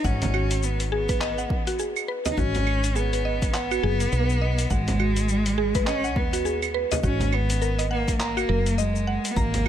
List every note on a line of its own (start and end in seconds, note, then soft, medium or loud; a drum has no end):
0.04 1.45 G#1 medium
0.04 0.65 C#4 medium
0.04 0.33 F#5 loud
0.04 kick loud
0.04 shaker medium
0.22 closed hi-hat soft
0.22 frame drum medium
0.22 shaker soft
0.34 0.91 F#4 medium
0.34 claves medium
0.51 closed hi-hat medium
0.51 shaker medium
0.63 0.92 B3 medium
0.63 shaker medium
0.80 closed hi-hat soft
0.80 shaker soft
0.92 1.76 B3 medium
0.92 1.08 G#4 loud
1.09 1.20 B4 medium
1.09 kick loud
1.09 closed hi-hat medium
1.09 shaker medium
1.21 1.37 D#5 loud
1.21 clap medium
1.21 shaker medium
1.38 1.66 F#5 medium
1.38 shaker soft
1.50 kick loud
1.67 1.79 F#4 loud
1.67 closed hi-hat soft
1.67 shaker medium
1.79 2.07 G#4 medium
1.79 shaker medium
1.96 claves medium
1.96 shaker soft
2.08 2.25 B4 medium
2.26 2.37 D#5 medium
2.26 closed hi-hat medium
2.26 frame drum medium
2.26 shaker medium
2.32 2.39 D#4 medium
2.38 3.78 G#1 medium
2.38 2.98 C#4 loud
2.38 2.54 F#4 medium
2.38 kick loud
2.38 shaker soft
2.55 closed hi-hat soft
2.55 frame drum medium
2.55 shaker soft
2.67 claves medium
2.84 closed hi-hat soft
2.84 shaker medium
2.96 3.54 B3 medium
2.96 3.06 G#4 medium
2.96 shaker medium
3.13 3.24 B4 medium
3.13 closed hi-hat soft
3.13 shaker soft
3.25 3.53 D#5 medium
3.42 kick loud
3.42 closed hi-hat soft
3.42 shaker medium
3.54 4.72 B3 loud
3.54 3.70 F#5 loud
3.54 clap medium
3.54 shaker medium
3.71 3.78 F#4 loud
3.71 claves medium
3.71 shaker soft
3.83 4.06 F#1 medium
3.83 3.93 G#4 loud
4.00 closed hi-hat soft
4.00 shaker medium
4.12 4.65 B1 medium
4.12 4.29 B4 medium
4.12 shaker medium
4.30 shaker soft
4.42 4.70 D#5 medium
4.59 closed hi-hat soft
4.59 shaker medium
4.71 6.16 G#1 medium
4.71 5.89 G#3 loud
4.71 4.99 F#5 medium
4.71 kick loud
4.71 shaker medium
4.88 closed hi-hat soft
4.88 frame drum medium
4.88 shaker soft
5.00 5.57 F#4 medium
5.00 claves medium
5.17 closed hi-hat soft
5.17 shaker medium
5.29 shaker medium
5.46 closed hi-hat soft
5.46 shaker soft
5.58 5.74 G#4 loud
5.75 5.86 B4 loud
5.75 kick loud
5.75 closed hi-hat soft
5.75 shaker medium
5.87 6.18 C#4 loud
5.87 6.02 D#5 loud
5.87 clap medium
5.87 shaker medium
6.04 6.32 F#5 medium
6.04 shaker soft
6.16 6.84 D#2 medium
6.16 6.75 B3 medium
6.16 kick loud
6.33 6.45 F#4 medium
6.33 closed hi-hat soft
6.33 shaker medium
6.45 6.73 G#4 medium
6.45 shaker medium
6.62 closed hi-hat soft
6.62 claves medium
6.62 shaker soft
6.74 6.91 B4 loud
6.92 7.02 D#5 medium
6.92 closed hi-hat soft
6.92 frame drum medium
6.92 shaker medium
7.03 8.44 G#1 medium
7.03 7.35 C#4 medium
7.03 7.20 F#4 medium
7.03 kick loud
7.03 shaker soft
7.20 closed hi-hat soft
7.20 frame drum medium
7.20 shaker soft
7.32 7.91 B3 medium
7.32 claves medium
7.50 closed hi-hat soft
7.50 shaker medium
7.62 7.72 A#4 medium
7.62 shaker medium
7.79 7.90 D#5 medium
7.79 closed hi-hat soft
7.79 shaker soft
7.91 8.19 A#3 medium
7.91 8.19 F#5 medium
8.08 kick loud
8.08 closed hi-hat soft
8.08 shaker medium
8.20 8.81 A#3 medium
8.20 8.36 A#5 loud
8.20 clap medium
8.20 shaker medium
8.37 8.44 F#4 loud
8.37 claves medium
8.37 shaker soft
8.49 9.17 F#1 medium
8.49 8.59 A#4 loud
8.66 closed hi-hat soft
8.66 shaker medium
8.78 9.32 G#3 medium
8.78 8.95 D#5 medium
8.78 shaker medium
8.96 shaker soft
9.07 9.35 F#5 medium
9.25 closed hi-hat soft
9.25 shaker medium
9.31 9.38 B3 medium
9.37 9.69 G#1 medium
9.37 9.69 A#3 loud
9.37 9.65 A#5 loud
9.37 kick loud
9.37 shaker soft
9.54 closed hi-hat soft
9.54 frame drum medium
9.54 shaker soft